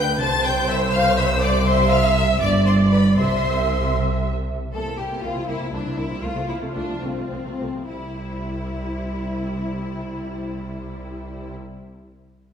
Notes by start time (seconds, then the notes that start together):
Already playing: D2 D3 B4 G6
0.20 C2 C3 C5 A5 A6
0.44 G5 G6
0.69 E5 E6
0.93 F5 F6
1.17 E5 E6
1.41 D5 D6
1.66 C5 E5 C6
1.90 F5 F6
2.15 E5 E6
2.40 G1 G2 D5 D6
2.65 C5 C6
2.91 B4 B5
3.17 C2 C3 C5 E5 C6
4.74 C2 C3 A#3 E4 A4 C5
4.86 C3 A#3
4.98 C2 C3 G3 G4
5.11 C3 A#3
5.23 C2 C3 A#3 F4
5.36 C3 G3
5.48 C2 C3 A#3 E4
5.60 C3 A#3
5.72 C2 C3 G3 D4
5.85 C3 A#3
5.97 C2 C3 A#3 E4
6.10 C3 G3
6.22 C2 C3 A3 F4
6.35 C3 A3
6.48 C2 C3 F3 E4
6.61 C3 A3
6.74 C2 C3 A3 D4
6.89 C3 F3
7.02 C2 C3 A3 C4
7.16 C3 A3
7.30 C2 C3 F3
7.46 C3 A3
7.60 C2 C3 A3
7.75 C3 F3
7.89 C2 C3 G3 E4 C5